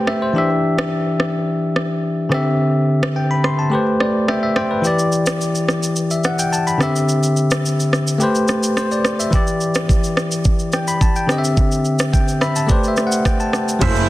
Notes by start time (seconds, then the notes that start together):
Already playing: A3 G4 B4 C5 G5, downlifter
0.07 E5, cross-stick
0.22 C5
0.33 E3 D4 G4
0.38 E5
0.78 cross-stick
1.20 cross-stick
1.76 cross-stick
2.29 D3 C4 G4, cross-stick
2.34 E5
3.03 cross-stick
3.16 G5
3.31 B5
3.44 C6, cross-stick
3.59 A5
3.70 A3 G4 B4
3.75 C5
4.00 D5, cross-stick
4.28 E5 G5, cross-stick
4.43 E5
4.56 C5 G5, cross-stick
4.71 B4
4.82 E3 E4 G4, shaker
4.87 D5
4.99 shaker
5.12 shaker
5.26 cross-stick, shaker
5.41 shaker
5.55 shaker
5.68 cross-stick, shaker
5.83 shaker
5.96 shaker
6.11 E5, shaker
6.24 F#5, cross-stick, shaker
6.39 G5, shaker
6.53 A5, shaker
6.67 B5, shaker
6.78 D3 C4 G4, cross-stick, shaker
6.83 E5
6.96 shaker
7.09 shaker
7.23 shaker
7.37 shaker
7.51 cross-stick, shaker
7.66 shaker
7.80 shaker
7.93 cross-stick, shaker
8.07 shaker
8.18 A3 G4 B4, shaker
8.23 C5
8.35 shaker
8.48 cross-stick, shaker
8.63 shaker
8.77 C5, cross-stick, shaker
8.91 D5, shaker
9.05 cross-stick, shaker
9.20 E5, shaker
9.30 E3 E4 G4, kick, shaker
9.35 D5
9.47 shaker
9.61 shaker
9.75 cross-stick, shaker
9.89 kick, shaker
10.04 shaker
10.17 cross-stick, shaker
10.32 shaker
10.45 kick, shaker
10.59 shaker
10.72 G5, cross-stick, shaker
10.88 B5, shaker
11.01 A5, kick, shaker
11.16 G5, shaker
11.27 D3 C4 G4, cross-stick, shaker
11.32 D#5
11.38 E5
11.44 shaker
11.57 kick, shaker
11.72 shaker
11.85 shaker
11.99 cross-stick, shaker
12.13 G5, kick, shaker
12.28 shaker
12.41 E5 B5, cross-stick, shaker
12.56 A5, shaker
12.67 A3 G4 B4 D5, kick, shaker
12.72 C5
12.84 shaker
12.88 E5
12.97 cross-stick, shaker
13.07 F#5
13.12 shaker
13.25 G5, kick, cross-stick, shaker
13.40 A5, shaker
13.53 cross-stick, shaker
13.68 shaker
13.79 F#1 F#3 A3 E4 G#4 C5 E5, kick, crash, low conga, shaker
13.84 C5
13.89 A4
13.96 shaker